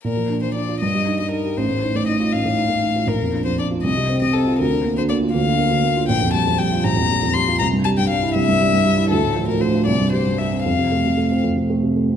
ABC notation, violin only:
X:1
M:6/8
L:1/16
Q:3/8=79
K:Bb
V:1 name="Violin"
B3 c d2 e3 e B2 | c3 d e2 f6 | B3 c d2 e3 e A2 | B3 c d2 f6 |
[K:F] g2 a2 g2 b4 c'2 | b2 a g f2 e6 | A3 B c2 d2 c2 e2 | f6 z6 |]